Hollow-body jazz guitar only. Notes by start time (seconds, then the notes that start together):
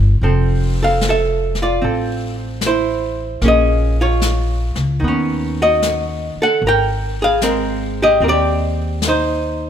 Already playing: A#3 E4
0.23 F3 C4 A4
0.83 A4 F5
1.09 A4 E5
1.62 F4 D5
1.82 C4 A4
2.66 E4 C5
3.42 A#3 C#4 G#4
3.48 D#5
4.01 F4 C#5
5.00 D#3
5.04 B3 C#4
5.62 F#4 D#5
6.42 A4 F#5
6.67 A#4 G5
7.22 G#4 F5
7.42 G#3 C4 A#4
8.02 G4 D#5
8.22 C4 G4 A#4
8.28 G4 D5
9.08 D#4 C5